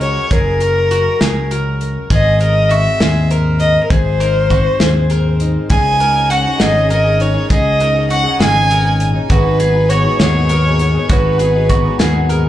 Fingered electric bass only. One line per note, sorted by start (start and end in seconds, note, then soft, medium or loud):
0.00 0.17 C#2 medium
0.31 1.07 F#1 medium
1.21 1.97 C#2 medium
2.10 2.86 G#1 medium
3.00 3.76 D#2 medium
3.91 4.66 G#1 medium
4.80 5.56 D#2 medium
5.70 6.46 C#2 medium
6.60 7.36 G#1 medium
7.50 8.26 C#2 medium
8.40 9.16 G#1 medium
9.30 10.06 G#1 medium
10.20 10.96 D#2 medium
11.10 11.86 G#1 medium
11.99 12.49 D#2 medium